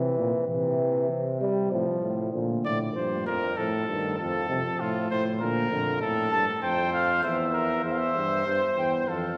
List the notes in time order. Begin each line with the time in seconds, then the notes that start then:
Already playing: C3 E3
0.18 A#2
0.48 C3 E3
1.10 C3
1.41 G3
1.71 A2 F3
2.03 A2
2.33 A#2 D3
2.64 A2 D5
2.95 G2 F3 C5
3.26 F2 A#4
3.57 A2 F3 A4
3.88 G2 D#3
4.18 F2 F3 A4
4.49 C3
4.80 A2 F4
5.10 A2 C5
5.40 A#2 D3 A#4
5.71 F2 D3
6.01 A2 A4
6.32 G2 A5
6.62 F2 C5 G5
6.93 F5
7.23 E2 C5 E5
7.53 A#4
7.84 E2 C5 E5
7.92 F5
7.98 E5
8.16 G2
8.46 G2 C5
8.77 E2 G5
9.08 F2 A4 F5